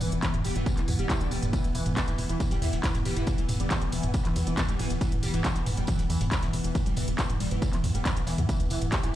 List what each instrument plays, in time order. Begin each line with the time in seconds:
Already playing: synth drone E3 B3
0.01 analog synth bass E1, analog synth lead E3, mid tom, open hi-hat, tambourine
0.12 analog synth bass E1, closed hi-hat
0.22 analog synth lead E3, kick, snare, clap, closed hi-hat, tambourine
0.34 analog synth bass E1, closed hi-hat, mid tom
0.44 analog synth bass E1, analog synth lead G3, snare, open hi-hat, tambourine
0.56 analog synth bass E1, analog synth lead E3, closed hi-hat, mid tom
0.66 kick, closed hi-hat, tambourine
0.77 analog synth bass E1, analog synth lead E3, clap, closed hi-hat
0.88 analog synth bass E2, mid tom, open hi-hat, tambourine
0.99 analog synth bass E1, analog synth lead G3, closed hi-hat
1.10 analog synth lead E3, kick, snare, clap, closed hi-hat, mid tom, tambourine
1.21 analog synth bass E1, analog synth lead D3, closed hi-hat
1.31 analog synth bass E1, analog synth lead G3, open hi-hat, tambourine
1.42 analog synth bass E1, snare, closed hi-hat, mid tom
1.53 analog synth lead E3, kick, closed hi-hat, mid tom, ride, tambourine
1.64 analog synth bass E1, closed hi-hat, ride
1.75 analog synth bass E1, analog synth lead E3, open hi-hat, ride, tambourine
1.86 analog synth bass E1, closed hi-hat, mid tom, ride
1.97 analog synth lead G3, kick, snare, clap, closed hi-hat, ride, tambourine
2.08 analog synth bass E1, analog synth lead E3, snare, closed hi-hat, mid tom, ride
2.18 analog synth bass E1, open hi-hat, ride, tambourine
2.29 analog synth bass E1, analog synth lead E3, closed hi-hat, ride
2.40 kick, closed hi-hat, mid tom, ride, tambourine
2.51 analog synth bass E1, analog synth lead G3, closed hi-hat, ride
2.62 analog synth bass E2, analog synth lead E3, mid tom, open hi-hat, ride, tambourine
2.73 analog synth bass E1, closed hi-hat, ride
2.83 analog synth lead E3, kick, snare, clap, closed hi-hat, ride, tambourine
2.95 analog synth bass E1, closed hi-hat, mid tom, ride
3.05 analog synth bass E1, analog synth lead G3, open hi-hat, ride, tambourine
3.16 analog synth bass E1, analog synth lead E3, closed hi-hat, mid tom, ride
3.27 kick, closed hi-hat, ride, tambourine
3.38 analog synth bass E1, analog synth lead E3, closed hi-hat, ride
3.49 analog synth bass E1, mid tom, open hi-hat, ride, tambourine
3.60 analog synth bass E1, analog synth lead G3, closed hi-hat, ride
3.70 analog synth lead E3, kick, snare, clap, closed hi-hat, mid tom, ride, tambourine
3.82 analog synth bass E1, closed hi-hat, ride
3.92 analog synth bass E1, analog synth lead E3, snare, open hi-hat, ride, tambourine
4.03 analog synth bass E1, closed hi-hat, mid tom, ride
4.14 analog synth lead G3, kick, closed hi-hat, ride, tambourine
4.25 analog synth bass E1, analog synth lead E3, clap, closed hi-hat, mid tom, ride
4.36 analog synth bass E2, open hi-hat, ride, tambourine
4.47 analog synth bass E1, analog synth lead E3, closed hi-hat, ride
4.57 kick, snare, clap, closed hi-hat, mid tom, ride, tambourine
4.69 analog synth bass E1, analog synth lead G3, closed hi-hat, ride
4.79 analog synth bass E1, analog synth lead E3, mid tom, open hi-hat, ride, tambourine
4.90 analog synth bass E1, snare, closed hi-hat, ride
5.01 analog synth lead E3, kick, closed hi-hat, ride, tambourine
5.12 analog synth bass E1, closed hi-hat, mid tom, ride
5.23 analog synth bass E1, analog synth lead G3, open hi-hat, ride, tambourine
5.34 analog synth bass E1, analog synth lead E3, closed hi-hat, mid tom, ride
5.44 kick, snare, clap, closed hi-hat, ride, tambourine
5.55 analog synth bass E1, analog synth lead E3, snare, closed hi-hat, ride
5.66 analog synth bass E1, mid tom, open hi-hat, ride, tambourine
5.77 analog synth bass E1, analog synth lead G3, closed hi-hat, ride
5.87 analog synth lead E3, kick, closed hi-hat, mid tom, ride, tambourine
5.99 analog synth bass E1, closed hi-hat, ride
6.10 analog synth bass E2, analog synth lead E3, open hi-hat, ride, tambourine
6.21 analog synth bass E1, closed hi-hat, mid tom, ride
6.31 analog synth lead G3, kick, snare, clap, closed hi-hat, ride, tambourine
6.42 analog synth bass E1, analog synth lead E3, closed hi-hat, mid tom, ride
6.53 analog synth bass E1, open hi-hat, ride, tambourine
6.64 analog synth bass E1, analog synth lead E3, closed hi-hat, ride
6.75 kick, closed hi-hat, mid tom, ride, tambourine
6.86 analog synth bass E1, analog synth lead G3, closed hi-hat, ride
6.96 analog synth bass E1, analog synth lead E3, mid tom, open hi-hat, ride, tambourine
7.08 analog synth bass E1, closed hi-hat, ride
7.18 analog synth lead E3, kick, snare, clap, closed hi-hat, ride, tambourine
7.29 analog synth bass E1, closed hi-hat, mid tom, ride
7.40 analog synth bass E1, analog synth lead G3, snare, open hi-hat, ride, tambourine
7.51 analog synth bass E1, analog synth lead E3, closed hi-hat, mid tom, ride
7.62 kick, closed hi-hat, ride, tambourine
7.73 analog synth bass E1, analog synth lead E3, clap, closed hi-hat, ride
7.84 analog synth bass E2, mid tom, open hi-hat, ride, tambourine
7.95 analog synth bass E1, analog synth lead G3, closed hi-hat, ride
8.05 analog synth lead E3, kick, snare, clap, closed hi-hat, mid tom, ride, tambourine
8.16 analog synth bass E1, closed hi-hat, ride
8.27 analog synth bass E1, analog synth lead E3, snare, open hi-hat, high tom, ride, tambourine
8.38 analog synth bass E2, closed hi-hat, mid tom, ride
8.49 analog synth lead E3, synth drone E3 B3, kick, closed hi-hat, mid tom, ride, tambourine
8.60 analog synth bass E1, closed hi-hat, ride
8.70 analog synth bass E1, analog synth lead E3, open hi-hat, ride, tambourine
8.82 analog synth bass E1, closed hi-hat, mid tom, ride
8.91 analog synth lead G3, kick, snare, clap, closed hi-hat, ride, tambourine
9.03 analog synth bass E1, analog synth lead E3, snare, closed hi-hat, mid tom, ride